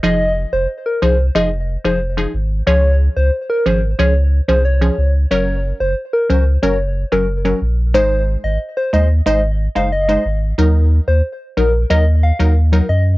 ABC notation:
X:1
M:4/4
L:1/16
Q:1/4=91
K:Ebdor
V:1 name="Soft synth lead"
e2 z c z B c z e z2 c z4 | d2 z c z B c z d z2 c d3 z | d2 z c z B c z d z2 B z4 | c2 z e z c e z e z2 f e3 z |
z3 c z2 B z e z f z3 e z |]
V:2 name="Synth stab"
[F,EA]4 z2 [F,EA] z [F,EA] z2 [F,EA] z [F,EA] z2 | [F,DA]4 z2 [F,DA] z [F,DA] z2 [F,DA] z [F,DA] z2 | [G,DB]4 z2 [G,DB] z [G,DB] z2 [G,DB] z [G,DB] z2 | [A,Ec]4 z2 [A,Ec] z [A,Ec] z2 [A,Ec] z [A,Ec] z2 |
[G,EB]4 z2 [G,EB] z [G,EB] z2 [G,EB] z [G,EB] z2 |]
V:3 name="Sub bass" clef=bass
F,,,3 F,,, z2 C,,2 F,,,3 F,,,3 A,,,2 | D,,3 D,, z2 A,,,2 D,,3 C,,3 D,,2 | G,,,3 G,,, z2 D,,2 G,,,3 G,,,3 B,,,2 | A,,,3 A,,, z2 E,,2 A,,,3 G,,,3 A,,,2 |
E,,3 E,, z2 B,,,2 E,,3 E,,3 G,,2 |]